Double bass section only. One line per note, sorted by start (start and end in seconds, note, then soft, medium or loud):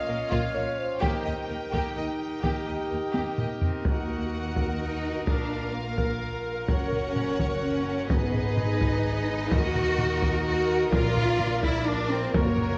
0.08 0.16 A#1 soft
0.32 0.40 A#1 medium
0.56 0.64 A#1 soft
1.03 1.11 D#2 medium
1.26 1.34 D#2 soft
1.50 1.58 D#2 soft
1.73 1.81 D#2 medium
1.97 2.05 D#2 soft
2.44 2.52 D#2 soft
2.68 2.76 D#2 soft
2.92 3.00 D#2 soft
3.15 3.23 D#2 soft
3.38 3.46 D#2 soft
3.86 5.23 D#2 medium
5.28 6.69 A#1 medium
6.69 8.10 F#1 medium
8.10 9.49 G#1 medium
9.52 10.93 D#2 medium
10.93 12.32 A#1 medium
12.34 12.78 F#1 medium